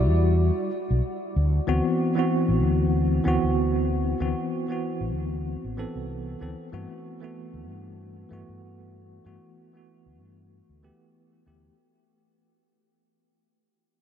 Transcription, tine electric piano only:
0.00 0.69 G3 medium
0.00 0.70 E4 medium
0.00 0.70 F#4 medium
0.00 0.71 D5 medium
1.67 2.12 E3 medium
1.67 2.13 B3 medium
1.67 2.13 C4 medium
1.67 2.13 F#4 medium
2.15 3.22 E3 medium
2.15 3.22 B3 medium
2.15 3.23 C4 medium
2.15 3.23 F#4 medium
3.24 4.16 E3 medium
3.24 4.17 B3 medium
3.24 4.17 C4 medium
3.24 4.18 F#4 loud
4.20 4.65 E3 medium
4.20 4.65 B3 medium
4.20 4.66 C4 medium
4.20 4.66 F#4 medium
4.68 5.74 E3 medium
4.68 5.75 B3 medium
4.68 5.75 C4 medium
4.68 5.76 F#4 medium
5.78 6.38 E3 medium
5.78 6.38 B3 medium
5.78 6.38 C4 medium
5.78 6.39 A4 medium
6.41 6.67 E3 medium
6.41 6.68 B3 medium
6.41 6.68 C4 medium
6.41 6.68 A4 medium
6.72 7.17 E3 medium
6.72 7.18 A3 medium
6.72 7.18 B3 medium
6.72 7.18 F#4 medium
7.20 8.27 E3 medium
7.20 8.27 A3 medium
7.20 8.28 B3 medium
7.20 8.29 F#4 medium
8.29 9.22 E3 medium
8.29 9.22 A3 medium
8.29 9.23 B3 medium
8.29 9.23 F#4 medium
9.25 9.70 E3 medium
9.25 9.71 A3 medium
9.25 9.71 B3 medium
9.25 9.71 F#4 medium
9.73 10.79 E3 medium
9.73 10.80 A3 medium
9.73 10.81 B3 medium
9.73 10.81 F#4 medium
10.83 11.43 E3 medium
10.83 11.43 A3 medium
10.83 11.44 B3 medium
10.83 11.44 G4 medium
11.46 11.73 E3 medium
11.46 11.73 A3 medium
11.46 11.73 B3 medium
11.46 11.74 G4 medium

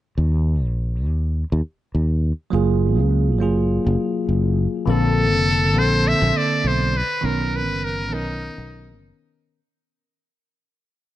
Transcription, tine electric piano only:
2.50 3.37 F#3 medium
2.50 3.38 A#3 medium
2.50 3.38 F4 medium
2.54 3.39 G#4 medium
3.39 4.84 F#3 medium
3.39 4.85 A#3 medium
3.39 4.85 F4 medium
3.39 4.86 G#4 medium
4.86 5.72 D3 medium
4.86 5.73 A#3 medium
4.86 5.74 C4 medium
4.90 5.74 A4 medium
5.74 6.91 D3 medium
5.74 6.92 A#3 medium
5.74 6.93 C4 medium
5.78 6.93 A4 medium
7.21 8.08 D#3 medium
7.21 8.08 B3 medium
7.21 8.09 C#4 medium
7.26 8.10 A#4 medium
8.09 9.54 D#3 medium
8.09 9.55 B3 medium
8.09 9.56 C#4 medium
8.09 9.56 A#4 medium

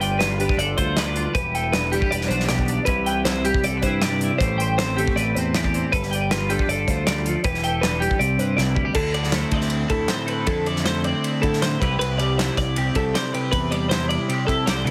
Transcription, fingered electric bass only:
0.00 0.46 G1 medium
0.57 0.73 G1 medium
0.78 1.26 D2 medium
1.35 1.99 E1 medium
2.11 2.27 E1 medium
2.29 2.78 B1 medium
2.87 3.51 C2 medium
3.64 3.80 C2 medium
3.83 4.30 G2 medium
4.40 5.04 A1 medium
5.16 5.32 A1 medium
5.35 5.83 E2 medium
5.93 6.56 G1 medium
6.68 6.84 G1 medium
6.88 7.35 D2 medium
7.45 8.08 E1 medium
8.19 8.36 C2 medium
8.38 8.54 G2 medium
8.58 8.75 C2 medium
8.76 8.94 D2 medium
8.95 9.43 D2 medium
9.52 9.84 D2 medium
9.90 10.06 D2 medium
10.47 11.11 F2 medium
11.44 11.75 D3 medium
11.81 11.97 C2 medium
12.00 12.48 C2 medium
12.57 12.89 C2 medium
12.96 13.12 C2 medium
13.52 14.16 E2 medium
14.48 14.64 C3 medium
14.66 14.84 C2 medium
14.86 14.91 D2 medium

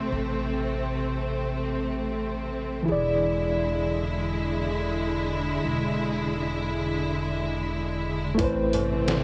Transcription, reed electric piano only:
0.00 2.81 A3 medium
0.00 2.83 E4 medium
0.00 2.84 B4 medium
0.00 2.86 C5 medium
2.83 8.33 E3 medium
2.83 8.34 E4 medium
2.89 8.36 G#4 medium
2.89 8.38 D5 medium
8.35 9.24 A3 medium
8.35 9.24 E4 medium
8.41 9.24 B4 medium
8.41 9.24 C5 loud

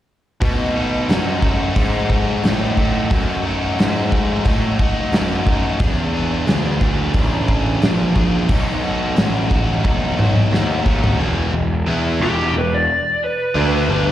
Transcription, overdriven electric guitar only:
0.41 0.74 B2 medium
0.41 0.76 F#3 medium
0.41 0.76 A3 medium
0.41 0.76 D#4 medium
0.41 0.77 F#4 medium
0.75 1.08 B2 medium
0.75 1.09 F#3 medium
0.75 1.09 A3 medium
0.75 1.10 D#4 medium
0.75 1.10 F#4 medium
1.09 1.41 B2 medium
1.09 1.41 F#3 medium
1.09 1.42 A3 medium
1.09 1.43 D#4 medium
1.09 1.43 F#4 medium
1.41 1.74 B2 medium
1.41 1.74 F#3 medium
1.41 1.75 A3 medium
1.41 1.75 D#4 medium
1.41 1.76 F#4 medium
1.75 2.09 B2 medium
1.75 2.09 F#3 medium
1.75 2.10 A3 medium
1.75 2.11 D#4 medium
1.75 2.11 F#4 medium
2.10 2.43 B2 medium
2.10 2.44 F#3 medium
2.10 2.44 A3 medium
2.10 2.45 D#4 medium
2.10 2.45 F#4 medium
2.44 2.76 B2 medium
2.44 2.77 F#3 medium
2.44 2.78 A3 medium
2.44 2.78 D#4 medium
2.44 2.78 F#4 medium
2.77 3.09 B2 medium
2.77 3.10 F#3 medium
2.77 3.11 A3 medium
2.77 3.11 D#4 medium
2.77 3.11 F#4 medium
3.10 3.42 B2 medium
3.10 3.43 F#3 medium
3.10 3.44 A3 medium
3.10 3.44 D#4 medium
3.10 3.44 F#4 medium
3.43 3.76 B2 medium
3.43 3.78 F#3 medium
3.43 3.78 A3 medium
3.43 3.79 D#4 medium
3.43 3.78 F#4 medium
3.77 4.12 B2 medium
3.77 4.13 F#3 medium
3.77 4.13 A3 medium
3.77 4.14 D#4 medium
3.77 4.14 F#4 medium
4.13 4.45 B2 medium
4.13 4.46 F#3 medium
4.13 4.46 A3 medium
4.13 4.46 D#4 medium
4.13 4.47 F#4 medium
4.46 4.79 B2 medium
4.46 4.79 F#3 medium
4.46 4.80 A3 medium
4.46 4.80 D#4 medium
4.46 4.81 F#4 medium
4.80 5.12 B2 medium
4.80 5.12 F#3 medium
4.80 5.13 A3 medium
4.80 5.14 D#4 medium
4.80 5.14 F#4 medium
5.13 5.46 B2 medium
5.13 5.47 F#3 medium
5.13 5.47 A3 medium
5.13 5.48 D#4 medium
5.13 5.48 F#4 medium
5.47 5.79 B2 medium
5.47 5.79 F#3 medium
5.47 5.79 A3 medium
5.47 5.80 D#4 medium
5.47 5.80 F#4 medium
5.80 6.11 E3 medium
5.80 6.13 B3 medium
5.80 6.13 D4 medium
5.80 6.14 G#4 medium
6.12 6.46 E3 medium
6.12 6.48 B3 medium
6.12 6.47 D4 medium
6.12 6.48 G#4 medium
6.48 6.79 E3 medium
6.48 6.81 B3 medium
6.48 6.81 D4 medium
6.48 6.81 G#4 medium
6.80 7.14 E3 medium
6.80 7.15 B3 medium
6.80 7.15 D4 medium
6.80 7.15 G#4 medium
7.15 7.46 E3 medium
7.15 7.48 B3 medium
7.15 7.48 D4 medium
7.15 7.49 G#4 medium
7.47 7.80 E3 medium
7.47 7.81 B3 medium
7.47 7.81 D4 medium
7.47 7.81 G#4 medium
7.81 8.14 E3 medium
7.81 8.16 B3 medium
7.81 8.16 D4 medium
7.81 8.16 G#4 medium
8.16 8.48 E3 medium
8.16 8.50 B3 medium
8.16 8.48 D4 medium
8.16 8.49 G#4 medium
8.49 8.81 B2 medium
8.49 8.82 F#3 medium
8.49 8.82 A3 medium
8.49 8.83 D#4 medium
8.49 8.83 F#4 medium
8.82 9.14 B2 medium
8.82 9.15 F#3 medium
8.82 9.16 A3 medium
8.82 9.16 D#4 medium
8.82 9.17 F#4 medium
9.16 9.48 B2 medium
9.16 9.48 F#3 medium
9.16 9.49 A3 medium
9.16 9.49 D#4 medium
9.16 9.50 F#4 medium
9.49 9.81 B2 medium
9.49 9.81 F#3 medium
9.49 9.82 A3 medium
9.49 9.82 D#4 medium
9.49 9.83 F#4 medium
9.82 10.15 B2 medium
9.82 10.16 F#3 medium
9.82 10.17 A3 medium
9.82 10.17 D#4 medium
9.82 10.18 F#4 medium
10.17 10.49 B2 medium
10.17 10.50 F#3 medium
10.17 10.51 A3 medium
10.17 10.51 D#4 medium
10.17 10.52 F#4 medium
10.51 10.83 B2 medium
10.51 10.83 F#3 medium
10.51 10.84 A3 medium
10.51 10.84 D#4 medium
10.51 10.85 F#4 medium
10.84 11.17 B2 medium
10.84 11.17 F#3 medium
10.84 11.18 A3 medium
10.84 11.18 D#4 medium
10.84 11.18 F#4 medium
11.18 11.52 E2 medium
11.18 11.52 B2 medium
11.18 11.53 E3 medium
11.53 11.81 E2 medium
11.53 11.81 B2 medium
11.86 12.20 E3 medium
11.86 12.20 B3 medium
11.86 12.21 E4 medium
12.21 12.53 E2 medium
12.21 12.53 B2 loud
12.21 12.54 E3 medium
12.54 12.81 E2 medium
12.54 12.82 B2 medium
13.54 13.88 D3 medium
13.54 13.88 A3 loud
13.54 13.89 D4 medium
13.88 14.12 G2 medium
13.88 14.12 D3 medium
13.88 14.12 G3 loud

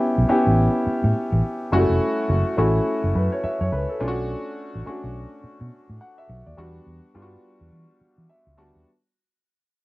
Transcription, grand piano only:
0.00 0.29 B3 medium
0.00 0.29 C#4 medium
0.00 0.30 E4 medium
0.00 0.10 G4 medium
0.29 1.04 B3 medium
0.29 1.04 C#4 medium
0.29 1.04 E4 medium
0.29 1.05 G4 medium
1.72 1.80 G3 medium
1.72 2.43 C#4 medium
1.72 2.43 E4 medium
1.72 2.43 F#4 loud
1.78 2.46 A3 medium
2.57 3.33 A3 medium
2.57 3.33 C#4 medium
2.57 3.33 E4 medium
2.57 3.33 F#4 loud
3.15 3.31 B4 medium
3.32 3.43 C#5 medium
3.44 3.60 E5 medium
3.61 3.72 C#5 medium
3.72 3.88 B4 medium
3.89 4.16 A4 medium
4.00 4.71 A3 loud
4.00 4.71 C#4 medium
4.00 4.72 D4 medium
4.00 4.09 F4 medium
4.08 4.75 F#4 loud
4.86 5.61 A3 medium
4.86 5.61 C#4 medium
4.86 5.62 D4 medium
4.86 5.62 F#4 medium
6.01 6.17 F#5 medium
6.18 6.45 E5 medium
6.46 6.73 D5 medium
6.57 6.95 G3 medium
6.57 6.95 B3 medium
6.57 6.95 D4 medium
6.57 6.96 F#4 loud
7.14 7.90 G3 medium
7.14 7.90 B3 medium
7.14 7.90 D4 medium
7.14 7.23 F4 medium
7.22 7.93 F#4 medium
8.30 8.56 E5 medium
8.57 8.78 G3 medium
8.57 8.78 B3 medium
8.57 8.78 D4 medium
8.57 8.78 F#4 medium
8.57 8.84 A5 medium

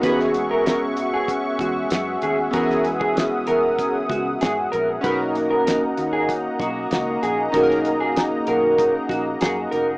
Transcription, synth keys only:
0.01 2.48 B3 medium
0.01 2.49 C#4 medium
0.01 2.50 F#4 medium
0.06 2.51 G#4 medium
2.51 4.98 B3 medium
2.51 4.99 C#4 medium
2.51 5.00 F#4 medium
2.56 5.01 G#4 medium
5.01 7.48 C#4 medium
5.01 7.49 D#4 medium
5.01 7.50 F#4 medium
5.06 7.51 A#4 medium
7.52 9.98 C#4 medium
7.52 9.98 D#4 medium
7.52 9.98 F#4 medium
7.57 7.62 G#4 medium
7.63 9.98 A#4 medium

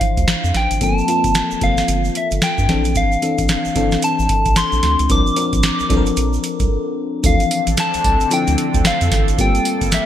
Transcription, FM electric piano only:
0.00 0.29 E3 medium
0.00 0.81 F3 medium
0.00 0.83 D4 medium
0.00 0.83 E4 medium
0.00 0.84 C5 medium
0.81 1.03 F3 medium
0.81 1.03 A#3 medium
0.81 1.03 C4 medium
0.81 1.03 A4 medium
1.08 1.51 F3 medium
1.08 1.52 A#3 medium
1.08 1.52 C4 medium
1.08 1.52 F4 medium
1.61 2.43 F3 medium
1.61 2.43 A#3 medium
1.61 2.43 C4 medium
1.61 2.44 A4 medium
2.68 3.14 E3 medium
2.68 3.14 C4 medium
2.68 3.14 D4 medium
2.68 3.14 A4 medium
3.22 3.66 E3 medium
3.22 3.66 C4 medium
3.22 3.66 D4 medium
3.22 3.66 A4 medium
3.75 4.57 E3 medium
3.75 4.57 C4 medium
3.75 4.58 D4 medium
3.75 4.58 A4 loud
5.09 5.31 F3 medium
5.09 5.32 C4 medium
5.09 5.32 D4 medium
5.09 5.32 A#4 medium
5.36 5.80 F3 medium
5.36 5.80 C4 medium
5.36 5.80 D4 medium
5.36 5.80 A#4 medium
5.89 6.71 F3 medium
5.89 6.72 C4 medium
5.89 6.72 D4 medium
5.89 5.98 A4 medium
5.97 6.75 A#4 loud
7.23 8.06 E3 medium
7.23 8.05 F3 medium
7.23 8.05 C4 medium
7.23 8.05 D4 medium
7.23 8.06 A4 medium
8.30 9.12 F3 medium
8.30 9.13 C4 medium
8.30 9.13 D4 medium
8.30 9.13 E4 medium
8.30 9.13 A4 medium
9.38 10.06 G3 medium
9.38 10.06 A#3 medium
9.38 10.06 C4 medium
9.38 10.06 F4 medium
9.38 10.06 A4 medium

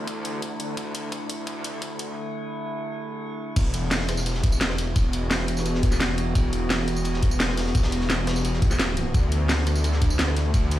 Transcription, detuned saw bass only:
0.00 0.76 D2 loud
0.77 2.15 D2 loud
3.56 4.94 E1 loud
4.96 6.34 E1 loud
6.35 7.74 E1 loud
7.75 8.08 E1 loud
8.10 8.43 E1 loud
8.45 9.13 E1 loud
9.14 10.53 D2 loud
10.54 10.79 D2 loud

